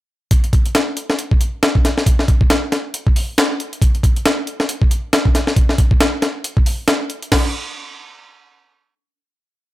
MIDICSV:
0, 0, Header, 1, 2, 480
1, 0, Start_track
1, 0, Tempo, 437956
1, 340, Time_signature, 4, 2, 24, 8
1, 10664, End_track
2, 0, Start_track
2, 0, Title_t, "Drums"
2, 339, Note_on_c, 9, 42, 82
2, 340, Note_on_c, 9, 36, 106
2, 449, Note_off_c, 9, 36, 0
2, 449, Note_off_c, 9, 42, 0
2, 480, Note_on_c, 9, 42, 41
2, 580, Note_on_c, 9, 36, 92
2, 581, Note_off_c, 9, 42, 0
2, 581, Note_on_c, 9, 42, 68
2, 690, Note_off_c, 9, 36, 0
2, 691, Note_off_c, 9, 42, 0
2, 718, Note_on_c, 9, 42, 43
2, 820, Note_off_c, 9, 42, 0
2, 820, Note_on_c, 9, 38, 115
2, 820, Note_on_c, 9, 42, 85
2, 930, Note_off_c, 9, 38, 0
2, 930, Note_off_c, 9, 42, 0
2, 1060, Note_on_c, 9, 42, 65
2, 1170, Note_off_c, 9, 42, 0
2, 1201, Note_on_c, 9, 38, 48
2, 1300, Note_on_c, 9, 42, 84
2, 1311, Note_off_c, 9, 38, 0
2, 1410, Note_off_c, 9, 42, 0
2, 1440, Note_on_c, 9, 36, 93
2, 1542, Note_on_c, 9, 42, 65
2, 1550, Note_off_c, 9, 36, 0
2, 1652, Note_off_c, 9, 42, 0
2, 1784, Note_on_c, 9, 38, 109
2, 1784, Note_on_c, 9, 42, 84
2, 1893, Note_off_c, 9, 38, 0
2, 1893, Note_off_c, 9, 42, 0
2, 1921, Note_on_c, 9, 36, 92
2, 2026, Note_on_c, 9, 38, 39
2, 2026, Note_on_c, 9, 42, 69
2, 2030, Note_off_c, 9, 36, 0
2, 2135, Note_off_c, 9, 38, 0
2, 2135, Note_off_c, 9, 42, 0
2, 2165, Note_on_c, 9, 38, 42
2, 2262, Note_on_c, 9, 36, 106
2, 2264, Note_on_c, 9, 42, 82
2, 2275, Note_off_c, 9, 38, 0
2, 2371, Note_off_c, 9, 36, 0
2, 2374, Note_off_c, 9, 42, 0
2, 2403, Note_on_c, 9, 38, 35
2, 2501, Note_on_c, 9, 36, 94
2, 2502, Note_on_c, 9, 42, 67
2, 2513, Note_off_c, 9, 38, 0
2, 2611, Note_off_c, 9, 36, 0
2, 2611, Note_off_c, 9, 42, 0
2, 2640, Note_on_c, 9, 36, 90
2, 2741, Note_on_c, 9, 38, 115
2, 2741, Note_on_c, 9, 42, 86
2, 2750, Note_off_c, 9, 36, 0
2, 2850, Note_off_c, 9, 38, 0
2, 2850, Note_off_c, 9, 42, 0
2, 2982, Note_on_c, 9, 38, 46
2, 2982, Note_on_c, 9, 42, 67
2, 3092, Note_off_c, 9, 38, 0
2, 3092, Note_off_c, 9, 42, 0
2, 3222, Note_on_c, 9, 42, 87
2, 3332, Note_off_c, 9, 42, 0
2, 3360, Note_on_c, 9, 36, 96
2, 3464, Note_on_c, 9, 46, 79
2, 3470, Note_off_c, 9, 36, 0
2, 3574, Note_off_c, 9, 46, 0
2, 3704, Note_on_c, 9, 38, 114
2, 3704, Note_on_c, 9, 42, 84
2, 3814, Note_off_c, 9, 38, 0
2, 3814, Note_off_c, 9, 42, 0
2, 3946, Note_on_c, 9, 42, 68
2, 4055, Note_off_c, 9, 42, 0
2, 4087, Note_on_c, 9, 42, 42
2, 4182, Note_on_c, 9, 36, 108
2, 4187, Note_off_c, 9, 42, 0
2, 4187, Note_on_c, 9, 42, 82
2, 4292, Note_off_c, 9, 36, 0
2, 4296, Note_off_c, 9, 42, 0
2, 4326, Note_on_c, 9, 42, 42
2, 4421, Note_on_c, 9, 36, 98
2, 4426, Note_off_c, 9, 42, 0
2, 4426, Note_on_c, 9, 42, 68
2, 4531, Note_off_c, 9, 36, 0
2, 4535, Note_off_c, 9, 42, 0
2, 4564, Note_on_c, 9, 42, 43
2, 4664, Note_off_c, 9, 42, 0
2, 4664, Note_on_c, 9, 38, 115
2, 4664, Note_on_c, 9, 42, 88
2, 4773, Note_off_c, 9, 38, 0
2, 4773, Note_off_c, 9, 42, 0
2, 4901, Note_on_c, 9, 42, 68
2, 5010, Note_off_c, 9, 42, 0
2, 5040, Note_on_c, 9, 38, 47
2, 5140, Note_on_c, 9, 42, 86
2, 5150, Note_off_c, 9, 38, 0
2, 5249, Note_off_c, 9, 42, 0
2, 5278, Note_on_c, 9, 36, 98
2, 5382, Note_on_c, 9, 42, 68
2, 5388, Note_off_c, 9, 36, 0
2, 5491, Note_off_c, 9, 42, 0
2, 5622, Note_on_c, 9, 38, 113
2, 5622, Note_on_c, 9, 42, 86
2, 5732, Note_off_c, 9, 38, 0
2, 5732, Note_off_c, 9, 42, 0
2, 5759, Note_on_c, 9, 36, 95
2, 5862, Note_on_c, 9, 38, 39
2, 5862, Note_on_c, 9, 42, 70
2, 5868, Note_off_c, 9, 36, 0
2, 5972, Note_off_c, 9, 38, 0
2, 5972, Note_off_c, 9, 42, 0
2, 5998, Note_on_c, 9, 38, 42
2, 6099, Note_on_c, 9, 36, 107
2, 6099, Note_on_c, 9, 42, 84
2, 6107, Note_off_c, 9, 38, 0
2, 6208, Note_off_c, 9, 36, 0
2, 6209, Note_off_c, 9, 42, 0
2, 6239, Note_on_c, 9, 38, 35
2, 6339, Note_on_c, 9, 36, 94
2, 6339, Note_on_c, 9, 42, 68
2, 6349, Note_off_c, 9, 38, 0
2, 6448, Note_off_c, 9, 36, 0
2, 6448, Note_off_c, 9, 42, 0
2, 6478, Note_on_c, 9, 36, 92
2, 6582, Note_on_c, 9, 38, 118
2, 6582, Note_on_c, 9, 42, 88
2, 6587, Note_off_c, 9, 36, 0
2, 6691, Note_off_c, 9, 38, 0
2, 6691, Note_off_c, 9, 42, 0
2, 6819, Note_on_c, 9, 38, 46
2, 6819, Note_on_c, 9, 42, 67
2, 6929, Note_off_c, 9, 38, 0
2, 6929, Note_off_c, 9, 42, 0
2, 7062, Note_on_c, 9, 42, 85
2, 7171, Note_off_c, 9, 42, 0
2, 7198, Note_on_c, 9, 36, 95
2, 7301, Note_on_c, 9, 46, 80
2, 7308, Note_off_c, 9, 36, 0
2, 7411, Note_off_c, 9, 46, 0
2, 7536, Note_on_c, 9, 38, 113
2, 7536, Note_on_c, 9, 42, 88
2, 7646, Note_off_c, 9, 38, 0
2, 7646, Note_off_c, 9, 42, 0
2, 7778, Note_on_c, 9, 42, 71
2, 7888, Note_off_c, 9, 42, 0
2, 7918, Note_on_c, 9, 42, 43
2, 8020, Note_on_c, 9, 36, 99
2, 8020, Note_on_c, 9, 38, 101
2, 8020, Note_on_c, 9, 49, 87
2, 8028, Note_off_c, 9, 42, 0
2, 8130, Note_off_c, 9, 36, 0
2, 8130, Note_off_c, 9, 38, 0
2, 8130, Note_off_c, 9, 49, 0
2, 10664, End_track
0, 0, End_of_file